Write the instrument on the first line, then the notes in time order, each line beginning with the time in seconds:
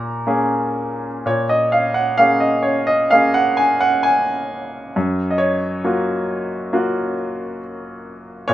grand piano
Already playing: A#2 A#5
0.27 A#3 C#4 G#4
1.26 A#2 C#5
1.49 D#5
1.72 F5
1.94 F#5
2.18 A#3 C#4 G#4 F5
2.40 D#5
2.63 C#5
2.87 D#5
3.11 A#3 C#4 G#4 F5
3.34 F#5
3.57 G#5
3.81 F#5
4.03 G#5
4.96 F#2
5.31 D#5
5.38 C#5
5.84 A#3 F4 F#4
6.73 A#3 F4 F#4
8.48 A#2 C#5